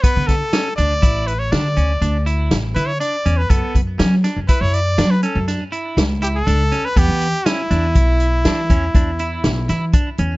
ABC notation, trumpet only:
X:1
M:7/4
L:1/16
Q:1/4=121
K:Edor
V:1 name="Trumpet"
B2 A4 d4 B c d6 z4 B c d3 B | A2 z6 B c d3 B A2 z6 G A4 B | G4 E16- E4 z4 |]